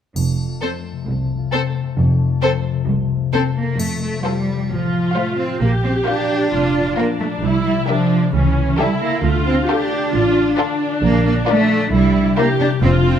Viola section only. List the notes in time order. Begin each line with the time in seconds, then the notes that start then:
0.62 C4
1.53 C4
2.42 C4
3.34 C4
4.71 F4
5.61 G4
6.52 F4
6.98 D4
7.43 E4
7.89 D4
8.34 C#4
8.79 E4
9.23 F4
9.68 G4
10.13 F4
10.58 D4
11.93 E4
12.38 G4
12.83 F4